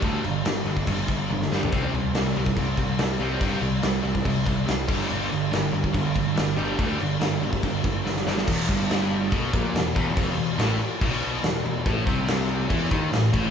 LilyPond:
<<
  \new Staff \with { instrumentName = "Overdriven electric guitar" } { \clef bass \time 4/4 \key e \minor \tempo 4 = 142 <g, d g>8 <g, d>8 <g, d>8 <g, d>8 <g, d>8 <g, d>8 <g, d>8 <g, d g>8 | <c g c'>8 <c g>8 <c g>8 <c g>8 <c g>8 <c g>8 <c g>8 <c g c'>8 | <c g c'>8 <c g>8 <c g>8 <c g>8 <c g>8 <c g>8 <c g>8 <g, d g>8 | <g, d g>8 <g, d>8 <g, d>8 <g, d>8 <g, d>8 <g, d>8 <g, d>8 <g, d g>8 |
<g, d g>8 <g, d>8 <g, d>8 <g, d>8 <g, d>8 <g, d>8 <g, d>8 <g, d g>8 | e,8 g,4. b,8 ais,8 e,8 e,8 | f,8 e,8 a,8 r8 b,4 e,8 e,8 | a,8 c4. e8 dis8 a,8 a,8 | }
  \new Staff \with { instrumentName = "Picked electric bass" } { \clef bass \time 4/4 \key e \minor d,8 g,,8 g,,8 g,,8 g,,8 g,,8 g,,8 g,,8 | c,8 c,8 c,8 c,8 c,8 c,8 c,8 c,8 | g,8 c,8 c,8 c,8 c,8 c,8 c,8 g,,8 | g,,8 g,,8 g,,8 g,,8 g,,8 g,,8 g,,8 g,,8 |
d,8 g,,8 g,,8 g,,8 g,,8 g,,8 g,,8 g,,8 | e,,8 g,,4. b,,8 ais,,8 e,,8 e,,8 | f,,8 e,,8 a,,8 r8 b,,4 e,,8 e,,8 | a,,8 c,4. e,8 dis,8 a,,8 a,,8 | }
  \new DrumStaff \with { instrumentName = "Drums" } \drummode { \time 4/4 <cymc bd>8 cymc8 <cymc sn>8 cymc16 bd16 <cymc bd>8 <cymc bd>8 tommh16 sn16 sn16 tomfh16 | <cymc bd>8 cymc8 <cymc sn>8 cymc16 bd16 <cymc bd>8 <cymc bd>8 <cymc sn>8 cymc8 | <cymc bd>8 cymc8 <cymc sn>8 cymc16 bd16 <cymc bd>8 <cymc bd>8 <cymc sn>8 <cymc bd>8 | cymc8 cymc8 <cymc sn>8 cymc16 bd16 <cymc bd>8 <cymc bd>8 <cymc sn>8 cymc8 |
<cymc bd>8 cymc8 <cymc sn>8 cymc16 bd16 <cymc bd>8 <cymc bd>8 sn16 sn16 sn16 sn16 | <cymc bd>8 <cymc bd>16 sn16 <cymc sn>8 cymc8 <cymc bd>8 <cymc bd>8 <cymc sn>8 <cymc bd>8 | <cymc bd>8 cymc8 <cymc sn>8 cymc8 <cymc bd>8 cymc8 <cymc sn>8 cymc8 | <cymc bd>8 <cymc bd>8 <cymc sn>8 cymc8 <cymc bd>8 <cymc bd>8 <cymc sn>8 <cymc bd>8 | }
>>